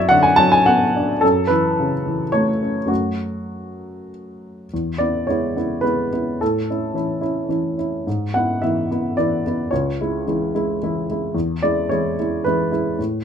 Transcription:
0.00 1.18 F#2 medium
0.00 0.28 F#3 soft
0.00 1.25 C#5 medium
0.00 1.25 D5 medium
0.00 0.11 E5 medium
0.09 0.56 D3 soft
0.09 0.24 F#5 medium
0.23 0.38 G#5 medium
0.36 0.83 F#3 soft
0.36 0.52 A5 medium
0.52 0.66 G#5 medium
0.66 1.11 B3 soft
0.66 1.21 F#5 medium
0.96 1.23 D4 soft
1.21 2.85 F#2 soft
1.21 1.49 A4 medium
1.47 1.94 E3 soft
1.47 2.31 B4 medium
1.79 2.22 C#3 soft
2.06 2.49 E3 soft
2.32 2.78 A3 soft
2.32 2.90 C#5 medium
2.62 2.88 C#4 soft
2.86 4.65 F#2 soft
2.86 4.66 F#3 soft
2.86 4.66 A3 soft
2.86 4.67 C#4 soft
2.86 4.09 F#4 medium
4.74 5.01 E2 soft
4.98 5.26 B3 soft
4.98 5.26 E4 soft
4.98 5.28 D5 medium
5.27 5.55 G#3 soft
5.27 5.55 B3 soft
5.27 5.55 E4 soft
5.27 5.84 C#5 medium
5.56 5.82 B3 soft
5.56 5.82 E4 soft
5.81 6.09 G#3 soft
5.81 6.09 B3 soft
5.81 6.09 E4 soft
5.81 6.39 B4 medium
6.13 6.38 B3 soft
6.13 6.38 E4 soft
6.41 6.68 A2 soft
6.41 8.07 A4 medium
6.70 6.93 C#4 soft
6.70 6.94 E4 soft
6.94 7.20 E3 soft
6.94 7.20 C#4 soft
6.94 7.20 E4 soft
7.21 7.47 C#4 soft
7.21 7.47 E4 soft
7.49 7.75 E3 soft
7.49 7.75 C#4 soft
7.49 7.76 E4 soft
7.78 8.03 C#4 soft
7.78 8.04 E4 soft
8.07 8.33 G#2 soft
8.34 8.60 B3 soft
8.34 8.60 E4 soft
8.34 8.62 F#5 medium
8.62 8.87 E3 soft
8.62 8.87 B3 soft
8.62 8.88 E4 soft
8.62 9.16 E5 medium
8.91 9.15 B3 soft
8.91 9.15 E4 soft
9.17 9.41 E3 soft
9.17 9.42 B3 soft
9.17 9.43 E4 soft
9.17 9.71 D5 medium
9.46 9.69 B3 soft
9.46 9.69 E4 soft
9.71 9.98 C#2 soft
9.71 11.34 C#5 medium
10.01 10.24 G#3 soft
10.01 10.24 E4 soft
10.27 10.51 E3 soft
10.27 10.51 G#3 soft
10.27 10.51 E4 soft
10.55 10.79 G#3 soft
10.55 10.78 E4 soft
10.83 11.06 E3 soft
10.83 11.06 G#3 soft
10.83 11.06 E4 soft
11.11 11.34 G#3 soft
11.11 11.34 E4 soft
11.35 11.61 E2 soft
11.62 11.88 G#3 soft
11.62 11.88 E4 soft
11.62 11.90 D5 medium
11.89 12.15 E3 soft
11.89 12.15 G#3 soft
11.89 12.16 E4 soft
11.89 12.44 C#5 medium
12.19 12.43 G#3 soft
12.19 12.42 E4 soft
12.44 12.69 E3 soft
12.44 12.70 G#3 soft
12.44 12.70 E4 soft
12.44 12.98 B4 medium
12.72 12.96 G#3 soft
12.72 12.96 E4 soft
12.99 13.24 A2 soft

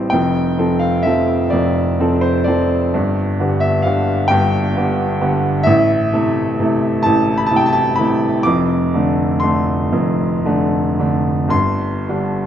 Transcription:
0.00 0.14 A1 soft
0.00 0.14 A2 medium
0.00 0.14 G3 soft
0.00 0.14 C4 soft
0.00 0.14 E4 soft
0.00 0.11 A5 medium
0.00 0.13 B5 medium
0.10 0.56 F1 medium
0.10 0.56 F2 medium
0.10 0.79 G5 medium
0.58 1.00 F3 soft
0.58 1.00 C4 soft
0.58 1.01 A4 soft
0.79 1.03 F5 medium
1.03 1.48 F3 soft
1.03 1.48 C4 soft
1.03 1.48 A4 soft
1.03 1.51 E5 medium
1.50 1.98 F1 medium
1.50 1.98 F2 medium
1.50 2.22 D5 medium
2.00 2.43 F3 soft
2.00 2.43 C4 soft
2.00 2.43 A4 medium
2.21 2.46 C5 medium
2.44 2.90 F3 soft
2.44 2.90 C4 soft
2.44 3.60 D5 medium
2.48 2.90 A4 soft
2.94 3.38 G1 medium
2.94 3.38 G2 medium
3.40 3.81 D3 soft
3.40 3.81 B3 soft
3.40 3.81 G4 soft
3.60 3.83 E5 medium
3.82 4.26 D3 soft
3.82 4.26 B3 soft
3.82 4.27 G4 soft
3.82 4.29 F5 medium
4.28 4.75 G1 medium
4.28 4.75 G2 medium
4.28 5.65 G5 medium
4.77 5.18 D3 medium
4.77 5.18 B3 soft
4.77 5.18 G4 medium
5.21 5.62 D3 medium
5.21 5.62 B3 medium
5.21 5.63 G4 medium
5.63 6.11 A1 medium
5.63 6.11 A2 medium
5.63 7.02 E5 medium
6.13 6.55 C3 soft
6.13 6.55 A3 soft
6.13 6.55 E4 soft
6.60 7.00 C3 soft
6.60 7.00 A3 soft
6.60 7.01 E4 soft
7.03 7.49 A1 medium
7.03 7.49 A2 medium
7.03 7.36 A5 medium
7.38 7.46 B5 medium
7.46 7.55 A5 medium
7.51 7.94 C3 soft
7.51 7.94 A3 soft
7.51 7.94 E4 medium
7.56 7.65 G5 medium
7.66 7.71 A5 medium
7.73 7.97 A5 medium
7.96 8.42 C3 soft
7.96 8.41 A3 soft
7.96 8.44 B5 medium
8.00 8.42 E4 medium
8.43 8.92 F1 medium
8.43 8.92 F2 medium
8.43 9.41 D6 medium
8.94 9.38 D3 soft
8.94 9.39 A3 soft
8.94 9.39 D4 soft
9.40 9.89 D3 soft
9.40 9.89 A3 soft
9.40 9.89 D4 soft
9.40 11.49 C6 medium
9.92 10.43 F1 medium
9.92 10.43 F2 medium
10.45 10.94 D3 soft
10.45 10.95 A3 soft
10.45 10.95 D4 soft
10.99 11.49 D3 soft
10.99 11.49 A3 soft
10.99 11.49 D4 soft
11.48 12.05 G1 medium
11.48 12.06 G2 medium
11.48 12.46 C6 medium
12.09 12.46 D3 soft
12.09 12.46 G3 soft
12.09 12.46 D4 soft

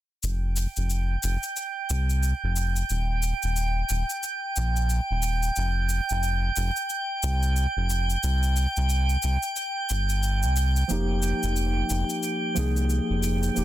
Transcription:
0.23 0.67 F1 medium
0.23 13.64 G5 medium
0.23 shaker soft
0.57 shaker medium
0.76 1.17 F1 medium
0.76 shaker soft
0.90 shaker soft
1.23 1.37 F1 loud
1.23 shaker medium
1.43 shaker soft
1.57 shaker soft
1.90 2.33 C2 loud
1.90 shaker medium
2.10 shaker soft
2.23 shaker soft
2.43 2.83 F1 medium
2.56 shaker medium
2.76 shaker soft
2.90 3.33 D#1 medium
2.90 shaker soft
3.23 shaker medium
3.43 3.83 D#1 medium
3.43 shaker soft
3.56 shaker soft
3.89 4.04 D#1 medium
3.89 shaker medium
4.10 shaker soft
4.23 shaker soft
4.56 5.00 A#1 loud
4.56 shaker medium
4.77 shaker soft
4.90 shaker soft
5.10 5.50 D#1 medium
5.23 shaker medium
5.43 shaker soft
5.56 6.00 F1 medium
5.56 shaker soft
5.89 shaker medium
6.09 6.50 F1 medium
6.09 shaker soft
6.23 shaker soft
6.56 6.70 F1 loud
6.56 shaker medium
6.76 shaker soft
6.90 shaker soft
7.23 7.66 C2 loud
7.23 shaker medium
7.43 shaker soft
7.56 shaker soft
7.76 8.16 F1 medium
7.90 shaker medium
8.10 shaker soft
8.23 8.66 C2 medium
8.23 shaker soft
8.43 shaker soft
8.57 shaker medium
8.77 9.17 C2 medium
8.77 shaker soft
8.90 shaker soft
9.10 shaker soft
9.23 9.37 C2 loud
9.23 shaker medium
9.43 shaker soft
9.56 shaker soft
9.89 10.45 G1 medium
9.89 shaker medium
10.10 shaker soft
10.23 shaker soft
10.43 10.83 C2 medium
10.43 shaker soft
10.56 shaker medium
10.76 shaker soft
10.88 11.33 F1 medium
10.88 12.52 F3 medium
10.88 12.53 A#3 medium
10.88 12.54 D#4 medium
10.88 shaker soft
10.92 12.55 G4 medium
11.23 shaker medium
11.43 11.83 F1 medium
11.43 shaker soft
11.56 shaker soft
11.90 12.04 F1 loud
11.90 shaker medium
12.10 shaker soft
12.23 shaker soft
12.54 13.00 C2 loud
12.54 13.52 F3 medium
12.54 13.53 A#3 medium
12.54 13.54 D#4 medium
12.54 13.54 G#4 medium
12.54 shaker medium
12.77 shaker soft
12.90 shaker soft
13.10 13.50 F1 medium
13.23 shaker medium
13.43 shaker soft
13.54 13.64 D#1 medium
13.54 13.64 F3 medium
13.54 13.64 A#3 medium
13.54 13.64 D#4 medium
13.54 13.64 G4 medium
13.54 shaker soft

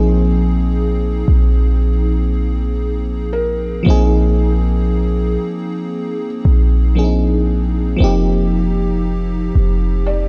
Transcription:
0.00 1.24 A#1 loud
0.00 3.80 F3 medium
0.00 3.81 A#3 medium
0.00 3.82 C4 medium
0.00 3.83 D#4 medium
0.00 3.83 G#4 medium
0.00 0.20 A#4 medium
0.00 0.20 C5 medium
1.28 3.82 A#1 loud
3.33 6.27 A#4 medium
3.83 5.37 A#1 loud
3.83 6.91 F3 medium
3.83 6.92 A#3 medium
3.83 6.92 C4 medium
3.88 6.93 D#4 medium
3.88 6.94 G#4 medium
6.45 7.96 A#1 loud
6.95 7.95 F3 medium
6.95 7.97 A#3 medium
6.95 7.99 C4 medium
6.95 7.05 D4 soft
6.95 8.01 G#4 medium
7.04 8.01 D#4 medium
7.96 10.29 F3 medium
7.96 10.29 A#3 medium
7.96 10.29 C4 medium
8.01 9.51 F1 loud
8.01 10.29 D#4 medium
8.01 10.29 G4 medium
9.55 10.29 F1 loud
10.06 10.29 D5 medium

